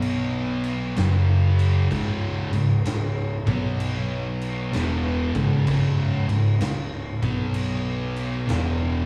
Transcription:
Already playing: fingered electric bass B1, distorted electric guitar B2 F#3 B3
0.02 crash
0.64 crash
0.96 fingered electric bass F#1, distorted electric guitar F#2 C#3 F#3, snare, crash
1.59 crash
1.91 fingered electric bass C#1, distorted electric guitar C#2 G#2 C#3, kick, crash
2.52 fingered electric bass C#1, distorted electric guitar C#2 G#2, crash
2.84 fingered electric bass C#1, distorted electric guitar C#2 G#2, snare, crash
3.46 fingered electric bass B1, distorted electric guitar B2 F#3 B3, kick, crash
3.80 crash
4.41 crash
4.72 fingered electric bass E1, distorted electric guitar E2 B2 E3, snare, crash
5.34 fingered electric bass C#1, distorted electric guitar C#2 G#2 C#3, kick, crash
5.67 fingered electric bass C#1, distorted electric guitar C#2 G#2 C#3, kick, crash
6.28 fingered electric bass C#1, distorted electric guitar C#2 G#2, crash
6.60 fingered electric bass C#1, distorted electric guitar C#2 G#2, snare, crash
7.22 fingered electric bass B1, distorted electric guitar B2 F#3 B3, kick, crash
7.54 crash
8.16 crash
8.47 fingered electric bass E1, distorted electric guitar E2 B2 E3, snare, crash

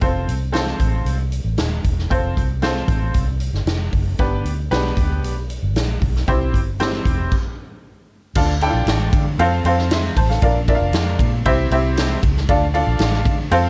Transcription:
0.01 fingered electric bass F1, upright piano C4 F4 A4 C5, kick, closed hi-hat
0.27 fingered electric bass C2, closed hi-hat
0.52 upright piano C4 F4 A4 C5, snare, closed hi-hat
0.67 snare
0.80 fingered electric bass A1, kick, closed hi-hat
1.05 fingered electric bass C2, closed hi-hat
1.32 closed hi-hat
1.44 fingered electric bass A1
1.58 fingered electric bass D#1, snare, closed hi-hat
1.84 fingered electric bass E1, kick, closed hi-hat
1.99 snare
2.10 fingered electric bass F1, upright piano C4 F4 A4 C5, kick, closed hi-hat
2.37 fingered electric bass C2, kick, closed hi-hat
2.62 upright piano C4 F4 A4 C5, snare, closed hi-hat
2.76 snare
2.88 fingered electric bass A1, kick, closed hi-hat
3.14 fingered electric bass C2, kick, closed hi-hat
3.40 closed hi-hat
3.53 fingered electric bass G1, snare
3.66 fingered electric bass F1, snare, closed hi-hat
3.93 fingered electric bass F#1, kick, open hi-hat
4.19 fingered electric bass G1, upright piano B3 D4 G4 B4, kick, closed hi-hat
4.44 fingered electric bass D2, closed hi-hat
4.71 fingered electric bass B1, upright piano B3 D4 G4 B4, snare, closed hi-hat
4.85 snare
4.97 fingered electric bass D2, kick, closed hi-hat
5.23 fingered electric bass B1, closed hi-hat
5.50 closed hi-hat
5.63 fingered electric bass G1
5.75 fingered electric bass A#1, snare, closed hi-hat
6.02 fingered electric bass B1, kick, open hi-hat
6.16 snare
6.28 fingered electric bass C2, upright piano C4 E4 G4 C5, kick, closed hi-hat
6.54 fingered electric bass G1, kick, closed hi-hat
6.80 upright piano C4 E4 G4 C5, snare, closed hi-hat
6.93 snare
7.05 fingered electric bass E1, kick, closed hi-hat
7.32 kick, crash
8.35 fingered electric bass D2, upright piano D4 F4 A4 D5 F5, kick, crash
8.61 upright piano D4 E4 A4 D5 G5, ride
8.69 upright piano F4
8.73 fingered electric bass A#1
8.86 fingered electric bass A1, snare, ride
9.12 fingered electric bass D3, kick, ride
9.39 fingered electric bass F2, upright piano C4 F4 A4 C5 F5, ride
9.64 fingered electric bass F2, upright piano C4 F4 A4 C5 F5, ride
9.78 snare
9.91 upright piano E5 C6, snare, ride
10.16 fingered electric bass A1, upright piano C5 A5, kick, open hi-hat, ride
10.30 upright piano A4 F5, snare
10.42 fingered electric bass A#1, upright piano D4 F4 A#4 D5 F5, kick, hi-hat pedal, ride
10.68 upright piano D4 F4 A#4 D5 E5, kick, ride
10.75 upright piano F5
10.80 fingered electric bass F1
10.93 fingered electric bass F2, snare, ride
11.19 fingered electric bass A#2, kick, ride
11.45 fingered electric bass C2, upright piano C4 E4 G4 C5 E5, kick, ride
11.71 fingered electric bass C2, upright piano C4 E4 G4 C5 E5, ride
11.97 snare, ride
12.23 fingered electric bass C#2, kick, ride
12.37 snare
12.49 fingered electric bass D2, upright piano D4 F4 A4 D5 F5, kick, ride
12.74 upright piano D4 F4 A4 D5 F5, ride
12.87 fingered electric bass A#1
12.99 fingered electric bass A1, snare, ride
13.13 snare
13.25 fingered electric bass D3, kick, ride
13.51 fingered electric bass F2, upright piano C4 F4 A4 C5 F5, ride

